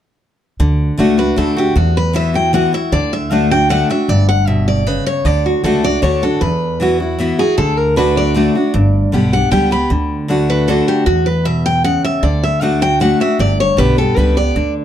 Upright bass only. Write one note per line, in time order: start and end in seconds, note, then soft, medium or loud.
0.60 0.90 D2 medium
0.98 1.32 C#2 medium
1.37 1.70 D2 medium
1.76 2.66 E2 medium
2.92 3.82 D2 medium
4.08 4.98 G1 medium
5.25 5.55 D2 medium
5.64 5.97 C#2 medium
6.02 6.36 D2 medium
6.41 7.31 E2 medium
7.58 8.47 D2 medium
8.74 9.04 G1 medium
9.13 9.46 B1 medium
9.52 9.85 C#2 medium
9.90 10.80 D2 medium
11.07 11.96 E2 medium
12.23 13.12 D2 medium
13.39 13.69 G1 medium
13.78 14.11 B1 medium
14.17 14.50 C#2 medium
14.55 14.85 D2 medium